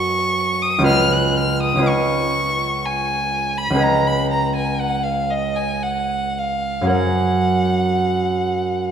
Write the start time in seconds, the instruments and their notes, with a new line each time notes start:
Already playing: harp F#2 C#4 F#4 A#4 D#5, violin C#6
0.62 violin D#6
0.78 harp C#2 C#4
0.83 harp F4 B4 D#5, violin F6
1.12 violin F#6
1.37 violin F6
1.63 violin D#6
1.75 harp C#2 C#4 F4
1.81 harp B4 D#5
1.88 violin C#6
2.86 violin G#5
3.58 violin B5
3.70 harp C#2 C#4
3.74 harp G#4 B4 D#5
3.83 violin A#5
4.07 violin B5
4.31 violin A#5
4.56 violin G#5
4.80 violin F#5
5.04 violin F5
5.31 violin D#5
5.56 violin G#5
5.83 violin F#5
6.39 violin F5
6.81 harp F#2 C#4 G#4
6.87 harp A#4 C#5
6.92 violin F#5